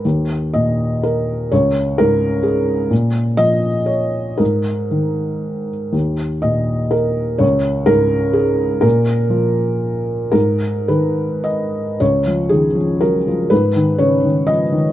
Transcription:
X:1
M:3/4
L:1/8
Q:1/4=122
K:Dbmix
V:1 name="Felt piano"
z2 e2 B2 | d2 B2 A2 | z2 e2 d2 | B4- B z |
z2 e2 B2 | d2 B2 A2 | B6 | B2 c2 e2 |
d2 A2 B2 | c2 d2 e2 |]
V:2 name="Felt piano" clef=bass
E,,2 B,,4 | D,,2 A,,4 | B,,2 F,4 | A,,2 E,4 |
E,,2 B,,4 | D,,2 A,,4 | B,,2 F,4 | A,,2 E,4 |
D,, F, E, F, G, F, | A,, E, D, E, F, E, |]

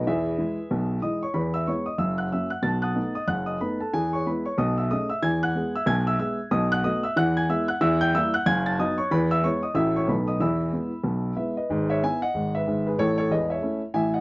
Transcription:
X:1
M:4/4
L:1/8
Q:"Swing" 1/4=186
K:E
V:1 name="Grand piano"
[GBe]6 [dd'] [cc'] | [Bb] [ee'] [cc'] [dd'] [ee'] [ff'] [ee'] [ff'] | [aa'] [fd'f']2 [dd'] [ff'] [dd'] [Bb] [Aa] | [Gg] [cc'] [Bb] [cc'] [dd'] [ee'] [dd'] [ee'] |
[gg'] [ff']2 [ee'] [gg'] [ee'] [ee'] z | [dd'] [ff'] [dd'] [ee'] [ff'] [gg'] [ee'] [ff'] | [ee'] [=g=g'] [ee'] [ff'] [^g^g'] [aa'] [dd'] [cc'] | [Bb] [ee'] [cc'] [dd'] [ee'] [cc'] [Bb] [dd'] |
[ebe']6 [Be] [Bd]- | [Bd] [ce] [eg] [df]2 [Be]2 [GB] | [Ac] [Ac] [Bd] [ce]2 z [eg] [df] |]
V:2 name="Grand piano" clef=bass
[E,,E,]2 [E,G,E]2 [B,,,B,,]2 [E,G,E]2 | [E,,E,]2 [G,B,E]2 [F,,,F,,]2 [F,^A,C]2 | [B,,,B,,]2 [A,B,D]2 [F,,,F,,]2 [A,B,D]2 | [E,,E,]2 [G,B,E]2 [B,,,B,,]2 [A,CG]2 |
[E,,E,]2 [G,B,G]2 [B,,,B,,]2 [G,B,G]2 | [B,,,B,,]2 [A,B,F]2 [E,,E,]2 [G,B,E]2 | [E,,E,]2 [=G,_B,E]2 [F,,,F,,]2 [F,=B,D]2 | [E,,E,]2 [G,B,E]2 [A,,,A,,A,CF]2 [B,,,B,,A,DF]2 |
[E,,E,]2 [G,B,E]2 [B,,,B,,]2 [G,B,E]2 | [G,,,G,,]2 [B,E]2 [G,,,G,,]2 [G,,,G,,]2 | [A,,,A,,]2 [E,,,E,,]2 [A,CE]2 [A,,,A,,]2 |]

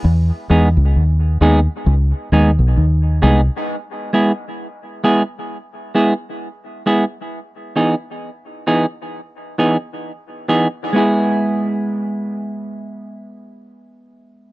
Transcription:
X:1
M:4/4
L:1/16
Q:"Swing 16ths" 1/4=66
K:E
V:1 name="Clean electric guitar"
z2 [G,B,DG]2 z2 [G,B,DG]2 z2 [G,B,DG]2 z2 [G,B,DG]2 | z2 [G,B,EG]2 z2 [G,B,EG]2 z2 [G,B,EG]2 z2 [G,B,EG]2 | z2 [E,B,DG]2 z2 [E,B,DG]2 z2 [E,B,DG]2 z2 [E,B,DG]2 | [G,B,EG]16 |]
V:2 name="Fingered electric bass" clef=bass
E,, z E,, C,, D,,2 D,, z C,, z D,, B,,, D,,2 ^B,,, z | z16 | z16 | z16 |]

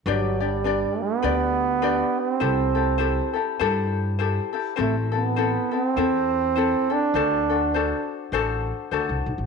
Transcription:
X:1
M:4/4
L:1/16
Q:"Swing" 1/4=102
K:G
V:1 name="Ukulele"
[DGBd]2 [DGd]2 [DGBd]4 [DGBd]4 [DGBd]4 | [EGAc]2 [EGA]2 [EGAc]2 [EGA]2 [EGAc]4 [EGAc]2 [EGA]2 | [CEAc]2 [CEA]2 [CEAc]2 [CEA]2 [CEAc]4 [CEAc]2 [CEA]2 | [DFAc]2 [DFA]2 [DFAc]4 [DFAc]4 [DFAc]4 |]
V:2 name="Trombone"
F,2 G,4 B,8 C2- | C6 z8 z2 | A,2 B,4 C8 D2- | D6 z8 z2 |]
V:3 name="Upright bass" clef=bass
G,,,8 D,,8 | C,,8 G,,8 | A,,,8 E,,8 | D,,8 A,,,4 D,, C,, B,,, A,,, |]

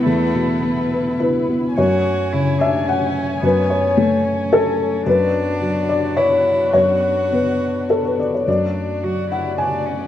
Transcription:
X:1
M:3/4
L:1/16
Q:1/4=108
K:F#m
V:1 name="Felt piano"
z8 B4 | c6 e2 f4 | B2 c4 z2 A4 | B6 d2 c4 |
c4 B4 A B d c | d6 f2 g4 |]
V:2 name="Felt piano" clef=bass
[E,,B,]2 B,,2 B,2 B2 E2 B,2 | F,,4 C,8 | F,,4 A,8 | F,,4 F,8 |
F,,4 B,8 | F,,4 F,8 |]
V:3 name="String section"
[B,EB]12 | [A,cg]12- | [A,cg]12 | [B,DF]12- |
[B,DF]12 | [A,Fd]12 |]
V:4 name="Cello"
A,8 z4 | F4 E2 D2 C4 | B,4 A,2 C6 | D8 E4 |
F8- F2 z2 | D4 F2 E2 D2 C2 |]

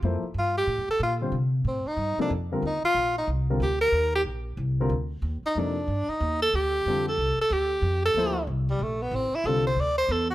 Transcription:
X:1
M:4/4
L:1/8
Q:"Swing" 1/4=185
K:Dphr
V:1 name="Tenor saxophone"
z2 F G2 A F z | z2 C E2 D z2 | E F2 E z2 G B- | B G z6 |
z E D3 E2 A | G3 A2 A G2- | G A3 z G, A, =B, | C =E A c d c A ^F |]
V:2 name="Grand piano"
[F,B,=EAc] z6 [D,G,CFc] | z4 z [C,F,B,EA] z [D,G,CFB] | z4 z [D,G,CFB] z2 | z4 z [D,G,CFB] z2 |
z2 [C,F,B,EA] z4 z | z2 [D,G,CFA] z4 z | z2 [F,B,=EAc] z4 z | z2 [D,G,CFA] z4 z |]
V:3 name="Upright bass" clef=bass
F,, z G,,2 (3A,, F,, D,, B,,2 | C,2 A,, z G,, z F,,2 | E,, z B,,,2 C,,2 D,,2 | E,,2 B,,,2 C,,2 D,,2 |
E,, z F,,2 G,, z E,,2 | D,,2 F,,2 C,, z D,,2 | F,,2 D,,2 C,,2 B,,,2 | A,,, z C,,2 D,,2 =E,,2 |]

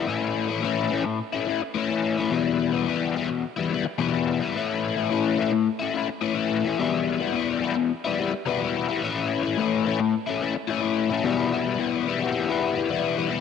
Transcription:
X:1
M:4/4
L:1/16
Q:1/4=107
K:Edor
V:1 name="Overdriven electric guitar"
[A,,E,A,CE]3 [A,CE] [A,,E,A,CE]2 [E,A,CE]3 [A,CE] [E,A,CE]2 [A,,E,A,CE] [A,CE]2 [A,CE] | [E,,B,,E,G,B,E]3 [E,G,B,E] [E,,B,,E,G,B,E]2 [E,G,B,E]3 [E,G,B,E] [E,G,B,E]2 [E,,B,,E,G,B,E] [E,G,B,E]2 [E,G,B,E] | [A,,E,A,CE]3 [A,CE] [A,,E,A,CE]2 [E,A,CE]3 [A,CE] [E,A,CE]2 [A,,E,A,CE] [A,CE]2 [A,CE] | [E,,B,,E,G,B,E]3 [E,G,B,E] [E,,B,,E,G,B,E]2 [E,G,B,E]3 [E,G,B,E] [E,G,B,E]2 [E,,B,,E,G,B,E] [E,G,B,E]2 [E,G,B,E] |
[A,,E,A,CE]3 [A,CE] [A,,E,A,CE]2 [E,A,CE]3 [A,CE] [E,A,CE]2 [A,,E,A,CE] [A,CE]2 [A,CE] | [E,,B,,E,G,B,E]2 [E,G,B,E] [E,G,B,E] [E,,B,,E,G,B,E]2 [E,G,B,E] [E,G,B,E]2 [E,G,B,E]2 [E,G,B,E] [E,,B,,E,G,B,E]2 [E,G,B,E] [E,G,B,E] |]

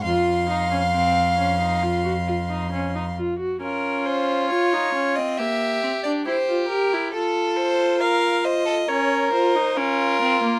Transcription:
X:1
M:4/4
L:1/16
Q:1/4=68
K:Bbm
V:1 name="Violin"
c'12- c'2 z2 | B2 c2 d3 e =e3 =d c2 B2 | =A2 c2 f2 e2 d2 c2 B4 |]
V:2 name="Violin"
f12- f2 z2 | F8 =G4 G4 | =A4 B2 c A B4 F4 |]
V:3 name="Viola"
F2 E D C2 D E F G F E D E F G | D4 F E D C B,2 C =D =E F =G E | F8 D2 F E D2 C B, |]
V:4 name="Cello" clef=bass
F,,12- F,,2 z2 | z16 | z16 |]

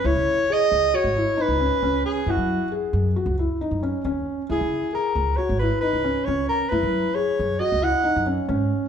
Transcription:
X:1
M:5/4
L:1/16
Q:1/4=135
K:C#dor
V:1 name="Soprano saxophone"
c4 d4 c4 B6 G2 | F4 z16 | G4 A4 c2 B2 B4 c2 A2 | B4 c4 d2 f4 z6 |]
V:2 name="Felt piano"
E4 G4 F2 E2 D2 C2 C4 | E4 G4 F2 E2 D2 C2 C4 | E4 G4 F2 E2 D2 C2 C4 | E4 G4 F2 E2 D2 C2 C4 |]
V:3 name="Upright bass" clef=bass
C,, C,2 z3 C,,2 z G,,,2 z2 C,,2 z C,,2 z2 | F,, F,2 z3 F,,2 z C,,2 z2 F,,2 z D,,2 z2 | C,, C,2 z3 C,,2 z G,,,2 z2 C,,2 z C,,2 z2 | F,, F,2 z3 F,,2 z C,,2 z2 F,,2 z G,,2 z2 |]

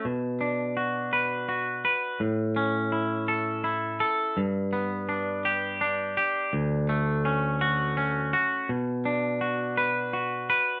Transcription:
X:1
M:6/8
L:1/8
Q:3/8=56
K:Bm
V:1 name="Clean electric guitar"
B,, D F B F B | A,, C E A E A | G,, B, D G D G | D,, A, C F C F |
B,, D F B F B |]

